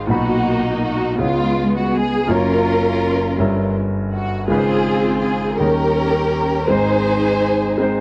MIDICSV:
0, 0, Header, 1, 3, 480
1, 0, Start_track
1, 0, Key_signature, -5, "major"
1, 0, Tempo, 735294
1, 55, Time_signature, 6, 3, 24, 8
1, 5226, End_track
2, 0, Start_track
2, 0, Title_t, "String section"
2, 0, Program_c, 0, 48
2, 58, Note_on_c, 0, 58, 55
2, 62, Note_on_c, 0, 63, 64
2, 64, Note_on_c, 0, 66, 71
2, 537, Note_off_c, 0, 66, 0
2, 545, Note_on_c, 0, 66, 66
2, 750, Note_off_c, 0, 58, 0
2, 752, Note_off_c, 0, 63, 0
2, 763, Note_off_c, 0, 66, 0
2, 780, Note_on_c, 0, 56, 63
2, 785, Note_on_c, 0, 59, 54
2, 791, Note_on_c, 0, 65, 84
2, 1143, Note_off_c, 0, 65, 0
2, 1155, Note_on_c, 0, 66, 67
2, 1257, Note_off_c, 0, 66, 0
2, 1274, Note_on_c, 0, 68, 80
2, 1471, Note_off_c, 0, 56, 0
2, 1474, Note_off_c, 0, 59, 0
2, 1499, Note_on_c, 0, 65, 65
2, 1500, Note_on_c, 0, 61, 67
2, 1504, Note_off_c, 0, 68, 0
2, 1504, Note_on_c, 0, 70, 87
2, 2431, Note_off_c, 0, 61, 0
2, 2431, Note_off_c, 0, 65, 0
2, 2459, Note_off_c, 0, 70, 0
2, 2700, Note_on_c, 0, 66, 67
2, 2921, Note_off_c, 0, 66, 0
2, 2926, Note_on_c, 0, 68, 85
2, 2932, Note_on_c, 0, 65, 59
2, 2933, Note_on_c, 0, 60, 61
2, 3384, Note_off_c, 0, 68, 0
2, 3394, Note_on_c, 0, 68, 75
2, 3627, Note_off_c, 0, 60, 0
2, 3627, Note_off_c, 0, 65, 0
2, 3627, Note_off_c, 0, 68, 0
2, 3639, Note_on_c, 0, 70, 93
2, 3650, Note_on_c, 0, 61, 62
2, 3651, Note_on_c, 0, 67, 61
2, 4345, Note_off_c, 0, 61, 0
2, 4346, Note_off_c, 0, 67, 0
2, 4357, Note_on_c, 0, 72, 95
2, 4366, Note_off_c, 0, 70, 0
2, 4373, Note_on_c, 0, 68, 70
2, 4378, Note_on_c, 0, 63, 69
2, 5226, Note_off_c, 0, 63, 0
2, 5226, Note_off_c, 0, 68, 0
2, 5226, Note_off_c, 0, 72, 0
2, 5226, End_track
3, 0, Start_track
3, 0, Title_t, "Grand piano"
3, 0, Program_c, 1, 0
3, 0, Control_c, 1, 64, 127
3, 0, Note_on_c, 1, 32, 59
3, 0, Note_on_c, 1, 44, 48
3, 0, Note_on_c, 1, 56, 58
3, 0, Note_on_c, 1, 63, 51
3, 0, Note_on_c, 1, 72, 68
3, 46, Note_on_c, 1, 46, 60
3, 54, Note_off_c, 1, 63, 0
3, 54, Note_on_c, 1, 63, 53
3, 55, Note_on_c, 1, 35, 50
3, 58, Note_on_c, 1, 47, 53
3, 63, Control_c, 1, 64, 0
3, 64, Note_on_c, 1, 66, 58
3, 66, Note_off_c, 1, 72, 0
3, 67, Note_off_c, 1, 32, 0
3, 67, Note_off_c, 1, 44, 0
3, 67, Note_off_c, 1, 56, 0
3, 72, Note_on_c, 1, 83, 62
3, 183, Control_c, 1, 64, 127
3, 534, Note_off_c, 1, 46, 0
3, 538, Note_off_c, 1, 63, 0
3, 543, Note_off_c, 1, 66, 0
3, 547, Note_off_c, 1, 83, 0
3, 749, Note_off_c, 1, 35, 0
3, 750, Note_off_c, 1, 47, 0
3, 761, Note_on_c, 1, 59, 46
3, 766, Note_on_c, 1, 64, 37
3, 772, Note_on_c, 1, 37, 46
3, 772, Note_on_c, 1, 49, 49
3, 776, Note_on_c, 1, 68, 43
3, 782, Note_on_c, 1, 73, 48
3, 783, Control_c, 1, 64, 0
3, 809, Note_on_c, 1, 65, 42
3, 813, Note_off_c, 1, 64, 0
3, 891, Control_c, 1, 64, 127
3, 1252, Note_off_c, 1, 59, 0
3, 1259, Note_off_c, 1, 68, 0
3, 1262, Note_off_c, 1, 73, 0
3, 1276, Note_off_c, 1, 65, 0
3, 1467, Note_off_c, 1, 37, 0
3, 1467, Note_off_c, 1, 49, 0
3, 1482, Note_on_c, 1, 58, 58
3, 1488, Note_on_c, 1, 65, 61
3, 1490, Note_on_c, 1, 30, 50
3, 1493, Note_on_c, 1, 42, 49
3, 1497, Note_on_c, 1, 54, 56
3, 1504, Control_c, 1, 64, 0
3, 1505, Note_on_c, 1, 73, 70
3, 1608, Control_c, 1, 64, 127
3, 1972, Note_off_c, 1, 58, 0
3, 1975, Note_off_c, 1, 65, 0
3, 1980, Note_off_c, 1, 54, 0
3, 1984, Note_off_c, 1, 73, 0
3, 2186, Note_off_c, 1, 30, 0
3, 2188, Note_off_c, 1, 42, 0
3, 2200, Note_on_c, 1, 55, 58
3, 2209, Note_on_c, 1, 61, 56
3, 2210, Note_on_c, 1, 43, 53
3, 2213, Note_on_c, 1, 31, 54
3, 2220, Note_on_c, 1, 76, 50
3, 2222, Control_c, 1, 64, 0
3, 2224, Note_on_c, 1, 70, 62
3, 2338, Control_c, 1, 64, 127
3, 2691, Note_off_c, 1, 55, 0
3, 2696, Note_off_c, 1, 61, 0
3, 2701, Note_off_c, 1, 76, 0
3, 2703, Note_off_c, 1, 70, 0
3, 2906, Note_off_c, 1, 43, 0
3, 2908, Note_off_c, 1, 31, 0
3, 2924, Note_on_c, 1, 56, 65
3, 2933, Note_on_c, 1, 49, 56
3, 2936, Note_on_c, 1, 32, 51
3, 2936, Note_on_c, 1, 44, 45
3, 2941, Control_c, 1, 64, 0
3, 2942, Note_on_c, 1, 65, 58
3, 2948, Note_on_c, 1, 71, 54
3, 2983, Note_off_c, 1, 71, 0
3, 2990, Note_on_c, 1, 72, 65
3, 3058, Control_c, 1, 64, 127
3, 3413, Note_off_c, 1, 56, 0
3, 3417, Note_off_c, 1, 49, 0
3, 3422, Note_off_c, 1, 65, 0
3, 3446, Note_off_c, 1, 72, 0
3, 3628, Note_off_c, 1, 32, 0
3, 3629, Note_off_c, 1, 44, 0
3, 3642, Note_on_c, 1, 55, 51
3, 3649, Note_on_c, 1, 61, 44
3, 3652, Note_on_c, 1, 39, 48
3, 3653, Note_on_c, 1, 51, 48
3, 3658, Note_on_c, 1, 63, 47
3, 3661, Control_c, 1, 64, 0
3, 3663, Note_on_c, 1, 68, 45
3, 3700, Note_off_c, 1, 68, 0
3, 3707, Note_on_c, 1, 70, 55
3, 3776, Control_c, 1, 64, 127
3, 4131, Note_off_c, 1, 55, 0
3, 4135, Note_off_c, 1, 61, 0
3, 4139, Note_off_c, 1, 63, 0
3, 4164, Note_off_c, 1, 70, 0
3, 4346, Note_off_c, 1, 39, 0
3, 4347, Note_off_c, 1, 51, 0
3, 4359, Note_on_c, 1, 56, 60
3, 4370, Note_on_c, 1, 44, 45
3, 4371, Note_on_c, 1, 60, 51
3, 4374, Note_on_c, 1, 32, 52
3, 4376, Note_on_c, 1, 63, 61
3, 4382, Control_c, 1, 64, 0
3, 4383, Note_on_c, 1, 72, 72
3, 4483, Control_c, 1, 64, 127
3, 4849, Note_off_c, 1, 56, 0
3, 4855, Note_off_c, 1, 60, 0
3, 4858, Note_off_c, 1, 63, 0
3, 4861, Note_off_c, 1, 72, 0
3, 5077, Note_on_c, 1, 56, 60
3, 5084, Note_on_c, 1, 60, 54
3, 5092, Note_on_c, 1, 63, 50
3, 5104, Note_on_c, 1, 72, 67
3, 5226, Note_off_c, 1, 32, 0
3, 5226, Note_off_c, 1, 44, 0
3, 5226, Note_off_c, 1, 56, 0
3, 5226, Note_off_c, 1, 60, 0
3, 5226, Note_off_c, 1, 63, 0
3, 5226, Note_off_c, 1, 72, 0
3, 5226, End_track
0, 0, End_of_file